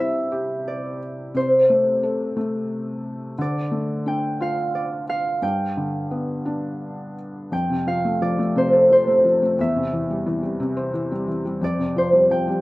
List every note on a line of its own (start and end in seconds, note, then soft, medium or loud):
0.00 1.31 C3 medium
0.00 0.97 G3 soft
0.00 1.31 E4 medium
0.00 1.28 C5 medium
0.00 1.72 E5 medium
0.32 1.32 G4 medium
0.68 2.52 D5 medium
1.34 3.34 C3 medium
1.34 3.34 C5 medium
1.70 2.35 A3 soft
2.03 3.35 A4 soft
2.37 3.35 A3 medium
3.38 5.39 D3 medium
3.38 4.74 D5 medium
3.71 5.04 A3 medium
4.06 5.38 D4 soft
4.06 5.42 G5 medium
4.40 5.40 F4 medium
4.40 5.09 F5 medium
4.75 4.84 D5 medium
5.09 6.76 F5 medium
5.42 7.48 G2 medium
5.42 6.98 G5 medium
5.77 7.13 D3 soft
6.11 7.48 B3 soft
6.45 7.49 D4 medium
7.52 9.55 F2 medium
7.52 9.08 G5 medium
7.70 8.54 C3 soft
7.87 8.20 F3 soft
7.87 9.54 F5 medium
8.05 8.37 A3 soft
8.22 8.89 F3 medium
8.22 10.07 D5 medium
8.39 9.06 A3 medium
8.56 9.55 C3 medium
8.56 8.92 C5 medium
8.73 9.56 A4 medium
8.90 9.23 F3 soft
8.90 10.90 C5 medium
9.07 9.41 A3 soft
9.24 9.58 F3 soft
9.42 9.59 A3 soft
9.59 11.58 E2 medium
9.59 11.33 E5 medium
9.76 10.58 C3 soft
9.93 10.25 E3 medium
10.10 10.42 G3 soft
10.26 10.92 E3 medium
10.43 11.10 G3 soft
10.60 11.59 C3 medium
10.77 11.59 C5 medium
10.94 11.26 E3 soft
11.12 11.44 G3 medium
11.27 11.61 E3 soft
11.45 11.62 G3 soft
11.61 12.61 F2 medium
11.61 12.61 D5 medium
11.79 12.61 C3 soft
11.96 12.29 F3 medium
11.96 12.07 C5 medium
12.13 12.46 G3 medium
12.30 12.61 F3 medium
12.30 12.61 G5 medium
12.48 12.61 G3 medium